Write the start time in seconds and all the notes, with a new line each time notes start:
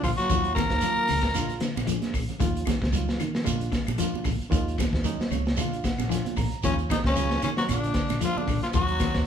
0.02 A#1 D3 F3 F4, kick, open hi-hat, claves, shekere
0.06 low conga
0.15 F#3 F#4, snare, closed hi-hat
0.19 muted fingered electric bass stroke, shekere
0.29 D#2 D#3 F3 G#3 C#4 F4, kick, closed hi-hat, shekere
0.44 closed hi-hat, shekere
0.54 D#3 A#3 A#4, kick, snare, closed hi-hat, claves, shekere
0.58 high conga
0.70 D#2, kick, snare
0.81 D#3 F#3 G#3 C#4 F4, closed hi-hat, shekere
0.96 muted fingered electric bass stroke, shekere
1.08 C#2 C#3, open hi-hat, high conga, low conga, claves, shekere
1.23 kick, snare, shekere
1.34 A#1 D3 G#3 A#3 D4 F4, snare, closed hi-hat, claves, shekere
1.49 closed hi-hat, shekere
1.60 D3, snare, closed hi-hat, shekere
1.75 A#1, snare, high conga, claves
1.87 F3 G#3 A#3 D4 G#4, closed hi-hat, shekere
2.02 snare, closed hi-hat, high conga, shekere
2.13 A#1, muted clean electric guitar stroke, kick, open hi-hat, low conga, claves, shekere
2.29 closed hi-hat, low conga, shekere
2.40 D#2 D#3 F3 G#3 C#4 F4, kick, closed hi-hat, shekere
2.55 closed hi-hat, shekere
2.65 D#3, kick, snare, closed hi-hat, high conga, claves, shekere
2.82 C#2, kick, snare, shekere
2.93 D#3 F#3 G#3 C#4 F4, closed hi-hat, shekere
3.08 snare, shekere
3.19 D#3, muted clean electric guitar stroke, closed hi-hat, high conga, low conga, claves, shekere
3.35 snare, shekere
3.44 A#1 D3 G#3 A#3 D4 F4, closed hi-hat, high conga, claves, shekere
3.61 closed hi-hat, shekere
3.72 D3, kick, snare, closed hi-hat, shekere
3.87 A#1, closed hi-hat, high conga, claves, shekere
3.98 F3 G#3 A#3 D4 F4, closed hi-hat, shekere
4.14 muted fingered electric bass stroke, high conga, shekere
4.24 A#1 D3, kick, open hi-hat, high conga, low conga, claves, shekere
4.40 muted fingered electric bass stroke, closed hi-hat, shekere
4.50 D#2 D#3 F3 G#3 C#4 F4, kick, closed hi-hat, shekere
4.68 closed hi-hat, shekere
4.78 D#3, kick, snare, closed hi-hat, high conga, claves, shekere
4.93 D#2, kick, snare
5.04 D#3 F#3 G#3 C#4 D#4, closed hi-hat, shekere
5.19 muted fingered electric bass stroke, snare, shekere
5.31 C#2 C#3 C#5, closed hi-hat, high conga, low conga, claves, shekere
5.45 snare, shekere
5.57 A#1 D3 G#3 A#3 D4 F4 F5, closed hi-hat, high conga, claves, shekere
5.71 closed hi-hat, shekere
5.84 D3 F#5, kick, snare, closed hi-hat, shekere
5.98 A#1, snare, high conga, claves, shekere
6.09 F3 G#3 A#3 D4 F4 G#5, snare, closed hi-hat, shekere
6.25 closed hi-hat, high conga, shekere
6.36 A#1 D3 A#5, kick, open hi-hat, high conga, low conga, claves, shekere
6.51 closed hi-hat, shekere
6.63 D#2 C#3 D#3 F3 G#3 C#4 F4, kick, closed hi-hat, shekere
6.78 closed hi-hat, shekere
6.89 D#3 D#4, kick, snare, closed hi-hat, high conga, claves, shekere
7.04 C#2 C#3 C#4, kick, snare, shekere
7.14 D#3 F#3 G#3 C#4 F4, closed hi-hat, shekere
7.30 snare
7.42 C#3 D#3 C#4, closed hi-hat, high conga, low conga, claves, shekere
7.57 F#3 F#4, snare, shekere
7.67 A#1 D3 G#3 A#3 D4 F4, muted clean electric guitar stroke, closed hi-hat, high conga, claves, shekere
7.71 D3
7.84 closed hi-hat, shekere
7.94 D3, kick, snare, closed hi-hat, shekere
8.09 A#1, snare, closed hi-hat, high conga, claves, shekere
8.21 F3 G#3 A#3 D4 F4, closed hi-hat, shekere
8.25 F4
8.36 D3 D4, muted fingered electric bass stroke, high conga, shekere
8.47 A#1 D3, kick, open hi-hat, low conga, claves, shekere
8.63 F3 F4, muted fingered electric bass stroke, snare, closed hi-hat, shekere
8.73 D#2 D#3 F3 F#3 G#3 C#4 F#4, kick, closed hi-hat, shekere
8.77 F#3
8.88 closed hi-hat, shekere
8.99 D#3, kick, snare, closed hi-hat, high conga, claves, shekere
9.14 D#2, kick, snare, shekere